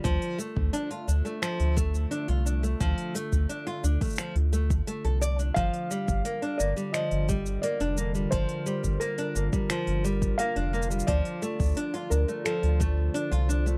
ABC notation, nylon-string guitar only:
X:1
M:4/4
L:1/16
Q:1/4=87
K:Gm
V:1 name="Nylon-string guitar"
F,2 A,2 D F D A, F,2 A,2 D F D A, | F,2 A,2 D F D A, F, z A, z A, A d D | F,2 G,2 B, D B, G, F,2 G,2 B, D B, G, | F,2 G,2 B, D B, G, F,2 G,2 B, D B, G, |
F,2 A,2 D F D A, F,2 A,2 D F D A, |]